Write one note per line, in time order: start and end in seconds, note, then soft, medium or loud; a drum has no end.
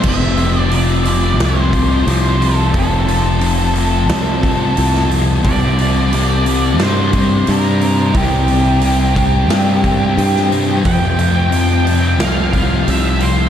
0.02 1.39 F1 medium
0.02 0.68 F2 medium
0.02 0.38 C3 medium
0.02 1.70 F3 medium
0.02 0.35 F3 loud
0.02 1.70 A3 medium
0.02 1.71 C4 medium
0.02 1.71 E4 loud
0.02 kick loud
0.02 crash loud
0.08 0.59 E5 loud
0.36 0.69 C3 medium
0.36 0.71 F3 medium
0.36 open hi-hat medium
0.59 0.75 D5 loud
0.68 1.36 F2 medium
0.68 1.07 C3 medium
0.68 1.03 F3 medium
0.68 open hi-hat medium
0.75 1.43 D5 medium
1.04 1.39 F3 medium
1.04 open hi-hat medium
1.08 1.37 C3 medium
1.37 2.03 C2 medium
1.37 2.03 F2 medium
1.37 1.73 C3 medium
1.37 1.69 F3 loud
1.37 snare loud
1.37 open hi-hat medium
1.45 2.10 C5 medium
1.70 2.05 C3 medium
1.70 2.07 F3 medium
1.70 2.03 F3 medium
1.70 2.05 A3 medium
1.70 2.06 C4 medium
1.70 2.07 E4 medium
1.70 kick medium
1.70 open hi-hat medium
2.04 2.70 C2 loud
2.04 2.71 F2 medium
2.04 2.41 C3 medium
2.04 2.71 F3 medium
2.04 2.72 A3 medium
2.04 2.73 C4 medium
2.04 2.74 E4 medium
2.04 open hi-hat medium
2.08 2.37 F3 medium
2.08 2.43 C5 medium
2.38 2.72 C3 medium
2.38 2.74 F3 medium
2.38 open hi-hat medium
2.43 2.77 A4 medium
2.72 4.10 F1 medium
2.72 3.37 F2 medium
2.72 3.08 C3 medium
2.72 4.40 F3 medium
2.72 3.04 F3 loud
2.72 4.41 A3 medium
2.72 4.42 C4 loud
2.72 4.42 E4 loud
2.72 kick loud
2.72 open hi-hat medium
2.78 5.09 A4 medium
3.06 3.40 C3 medium
3.06 3.41 F3 medium
3.06 open hi-hat medium
3.39 4.07 F2 medium
3.39 3.76 C3 medium
3.39 3.73 F3 medium
3.39 open hi-hat medium
3.74 4.09 C3 medium
3.74 4.10 F3 medium
3.74 open hi-hat medium
4.08 4.73 C2 medium
4.08 4.74 F2 medium
4.08 4.42 C3 medium
4.08 4.39 F3 medium
4.08 snare loud
4.08 open hi-hat medium
4.41 4.76 C3 medium
4.41 4.77 F3 medium
4.41 4.74 F3 medium
4.41 4.75 A3 medium
4.41 4.76 C4 medium
4.41 4.77 E4 medium
4.41 kick medium
4.41 open hi-hat medium
4.75 5.41 C2 loud
4.75 5.42 F2 medium
4.75 5.11 C3 medium
4.75 5.41 F3 medium
4.75 5.08 F3 medium
4.75 5.42 A3 medium
4.75 5.44 C4 medium
4.75 5.44 E4 medium
4.75 open hi-hat medium
4.95 snare soft
5.09 5.42 C3 medium
5.09 5.42 F3 medium
5.09 open hi-hat medium
5.43 6.80 C2 medium
5.43 6.12 C3 medium
5.43 7.11 C3 medium
5.43 7.14 E3 medium
5.43 7.11 G3 loud
5.43 5.82 G3 medium
5.43 7.13 C4 loud
5.43 5.77 C4 loud
5.43 7.13 E4 loud
5.43 7.11 A#4 loud
5.43 6.83 D5 loud
5.43 kick loud
5.43 open hi-hat medium
5.78 6.15 C4 medium
5.78 open hi-hat medium
5.82 6.13 G3 medium
6.12 6.77 C3 medium
6.12 6.48 G3 medium
6.12 6.44 C4 medium
6.12 open hi-hat medium
6.44 6.79 G3 medium
6.44 6.81 C4 medium
6.44 open hi-hat medium
6.78 7.43 G2 medium
6.78 7.45 C3 medium
6.78 7.15 G3 medium
6.78 snare loud
6.78 open hi-hat medium
6.82 7.12 C4 medium
6.82 7.51 C5 loud
7.12 7.44 C3 medium
7.12 7.46 E3 medium
7.12 7.45 G3 medium
7.12 7.46 G3 medium
7.12 7.49 C4 medium
7.12 7.46 C4 medium
7.12 7.47 E4 medium
7.12 7.45 A#4 medium
7.12 kick medium
7.12 open hi-hat medium
7.45 8.11 G2 loud
7.45 8.12 C3 medium
7.45 8.14 E3 medium
7.45 8.12 G3 medium
7.45 7.82 G3 medium
7.45 8.14 C4 medium
7.45 8.14 E4 medium
7.45 8.13 A#4 medium
7.45 open hi-hat medium
7.50 7.79 C4 medium
7.50 8.17 A#4 medium
7.80 8.14 G3 medium
7.80 8.17 C4 medium
7.80 open hi-hat medium
8.13 9.51 C2 loud
8.13 9.81 C3 loud
8.13 8.81 C3 medium
8.13 9.84 E3 medium
8.13 9.81 G3 loud
8.13 8.51 G3 loud
8.13 9.83 C4 medium
8.13 8.48 C4 loud
8.13 9.83 E4 medium
8.13 10.48 G4 medium
8.13 9.81 A#4 medium
8.13 kick loud
8.13 open hi-hat medium
8.48 8.83 G3 medium
8.48 8.85 C4 medium
8.48 open hi-hat medium
8.81 9.48 C3 medium
8.81 9.18 G3 medium
8.81 open hi-hat medium
8.86 9.15 C4 medium
9.15 9.50 G3 medium
9.15 9.52 C4 medium
9.15 kick medium
9.15 open hi-hat medium
9.49 10.14 G2 medium
9.49 10.15 C3 medium
9.49 9.85 G3 medium
9.49 9.83 C4 loud
9.49 snare loud
9.49 open hi-hat medium
9.83 10.14 C3 medium
9.83 10.15 E3 medium
9.83 10.15 G3 medium
9.83 10.17 G3 medium
9.83 10.20 C4 medium
9.83 10.16 C4 medium
9.83 10.17 E4 medium
9.83 10.15 A#4 medium
9.83 kick medium
9.83 open hi-hat medium
10.15 10.81 G2 loud
10.15 10.82 C3 medium
10.15 10.83 C3 medium
10.15 10.83 E3 medium
10.15 10.82 G3 medium
10.15 10.52 G3 medium
10.15 10.84 C4 medium
10.15 10.85 E4 medium
10.15 10.83 A#4 medium
10.15 open hi-hat medium
10.20 10.49 C4 medium
10.36 snare soft
10.50 10.84 G3 medium
10.50 13.49 C4 medium
10.50 open hi-hat medium
10.83 11.51 F2 medium
10.83 12.21 F2 medium
10.83 11.21 C3 medium
10.83 12.51 F3 medium
10.83 12.51 A3 medium
10.83 12.54 C4 medium
10.83 12.53 E4 medium
10.83 12.52 A4 loud
10.83 12.25 G5 loud
10.83 kick loud
10.83 open hi-hat medium
10.87 11.18 F3 loud
11.18 11.51 C3 medium
11.18 11.54 F3 medium
11.18 open hi-hat soft
11.51 12.18 F2 medium
11.51 11.87 C3 medium
11.51 11.84 F3 medium
11.51 open hi-hat medium
11.85 12.19 C3 medium
11.85 12.20 F3 medium
11.85 open hi-hat medium
12.18 12.84 C2 medium
12.18 12.86 F2 medium
12.18 12.55 C3 medium
12.18 12.51 F3 medium
12.18 12.90 F5 medium
12.18 snare loud
12.18 open hi-hat medium
12.53 12.88 C3 medium
12.53 12.90 F3 medium
12.53 12.85 F3 medium
12.53 12.85 A3 medium
12.53 12.86 C4 medium
12.53 12.87 E4 medium
12.53 12.85 A4 medium
12.53 kick medium
12.53 open hi-hat medium
12.86 13.49 C2 medium
12.86 13.49 F2 medium
12.86 13.22 C3 medium
12.86 13.49 F3 medium
12.86 13.49 A3 medium
12.86 13.49 C4 medium
12.86 13.49 E4 medium
12.86 13.49 A4 medium
12.86 13.23 E5 medium
12.86 open hi-hat medium
12.91 13.19 F3 medium
13.20 13.49 C3 medium
13.20 13.49 F3 medium
13.20 13.49 C5 medium
13.20 open hi-hat medium